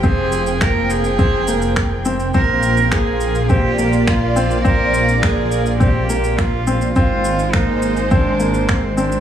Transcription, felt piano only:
X:1
M:4/4
L:1/8
Q:1/4=104
K:Bbmix
V:1 name="Felt piano"
C2 B,2 C B,2 C | C2 B,2 C B,2 C | C2 B,2 C B,2 C | C2 B,2 C B,2 C |]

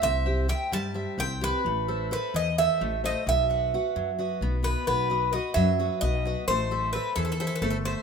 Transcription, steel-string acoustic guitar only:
X:1
M:7/8
L:1/8
Q:1/4=130
K:Bphr
V:1 name="Steel-string acoustic guitar"
C [Gce] [Gce] G, [Gce] C [Gce] | A, [Ace] [Ace] E, [Ace] A, [Ace] | B, [FBf] [FBf] F, [FB^d] B, [FBd] | B, [FB^d] [FBd] F, [FBd] B, [FBd] |
A, [Ace] [Ace] E, [Ace] A, [Ace] |]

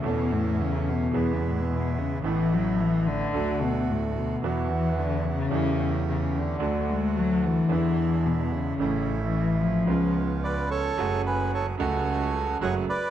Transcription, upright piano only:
X:1
M:4/4
L:1/8
Q:1/4=110
K:A
V:1 name="Upright piano" clef=bass
[E,,E,A,CA]4 [E,,E,G,B,G]4 | [A,,,A,,E,A,B,A]4 [D,,D,F,A,F]4 | [E,,E,F,B,F]4 [E,,C,E,=G,A,E]4 | [D,,D,F,A,F]4 [E,,D,E,G,B,E]4 |
[A,,,A,,C,E,A,E]4 [C,,C,G,B,^E]4 | [K:F#m] [F,,C,F,G,A,F]3 [C,,C,F,A,F]3 [F,,C,F,G,A,F] z |]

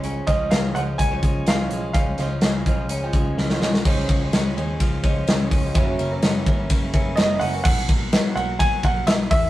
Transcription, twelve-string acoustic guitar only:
X:1
M:4/4
L:1/16
Q:1/4=126
K:C#mix
V:1 name="Twelve-string acoustic guitar" clef=bass
[C,E,G,C]2 [C,E,G,C]4 [C,E,G,C]3 [C,E,G,C]4 [C,E,G,C]3 | [C,E,G,C]2 [C,E,G,C]4 [C,E,G,C]3 [C,E,G,C]4 [C,E,G,C]3 | [C,E,G,C]3 [E,G,C]3 [C,E,G,C]4 [C,E,G,C]2 [C,E,G,C]3 [E,G,C] | [F,,C,=E,A,C]3 [E,A,C]3 [C,E,A,C]4 [C,E,A,C]2 [C,E,A,C]3 [E,A,C] |
[K:B] z16 |]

